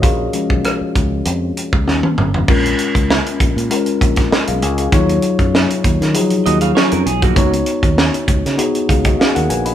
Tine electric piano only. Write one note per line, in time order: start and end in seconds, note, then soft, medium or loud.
0.00 0.34 C#4 medium
0.00 1.89 F4 medium
0.00 1.89 F#4 medium
0.00 0.61 G#4 medium
0.00 1.89 A#4 medium
0.00 1.89 C#5 medium
0.00 1.89 D5 medium
0.00 1.89 D#5 medium
0.00 0.60 F5 medium
0.33 1.83 F3 medium
0.33 1.83 G#3 medium
0.33 1.83 C#4 medium
1.87 2.45 G3 medium
1.87 2.45 B3 soft
1.87 2.45 C#4 medium
2.48 3.24 G#3 medium
2.48 3.25 C#4 medium
2.48 3.25 F4 medium
2.48 3.25 A#4 medium
3.70 4.46 G#3 medium
3.70 4.46 C#4 medium
3.70 4.46 F4 medium
3.70 4.32 A#4 medium
4.31 4.47 D#5 medium
4.48 4.62 G#4 medium
4.48 4.61 F5 medium
4.63 4.78 G#5 medium
4.79 5.08 G#4 medium
4.79 5.08 F5 medium
4.92 5.00 F3 medium
4.92 5.68 D#4 medium
4.92 5.69 F4 medium
4.92 5.69 C#5 loud
4.99 5.71 F#3 medium
6.14 6.21 F3 medium
6.14 6.90 D#4 medium
6.14 6.90 F4 medium
6.14 6.90 G#4 medium
6.20 6.93 F#3 medium
7.35 8.12 B3 medium
7.35 8.12 D#4 medium
7.35 8.12 F#4 medium
7.35 8.12 C#5 medium
8.57 9.33 B3 medium
8.57 9.34 D#4 medium
8.57 8.89 F#4 medium
8.57 8.88 G#4 medium
8.89 9.05 G#4 soft
8.89 9.05 F5 medium
9.05 9.19 F#4 medium
9.05 9.19 D#5 medium
9.20 9.35 G#4 medium
9.20 9.35 F5 medium
9.35 9.49 A#4 medium
9.35 9.49 F#5 medium
9.50 9.66 B4 medium
9.50 9.65 G#5 medium
9.66 9.74 D#5 medium
9.66 9.74 B5 medium